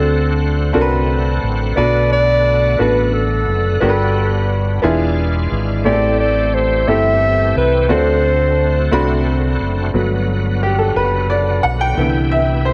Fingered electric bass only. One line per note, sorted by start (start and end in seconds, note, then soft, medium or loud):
0.00 0.71 D2 medium
0.75 1.39 C2 medium
1.43 1.74 A1 medium
1.77 2.75 B1 medium
2.79 3.43 A1 medium
3.47 3.79 F#1 medium
3.81 4.79 G1 loud
4.83 5.47 E1 medium
5.51 5.83 G#1 medium
5.85 6.83 A1 loud
6.87 7.52 G1 medium
7.56 7.87 C2 medium
7.90 8.88 D2 medium
8.92 9.55 C2 medium
9.60 9.91 F#1 medium
9.93 10.91 G1 medium
10.95 11.59 F#1 medium
11.64 11.95 B1 medium
11.97 12.73 C2 medium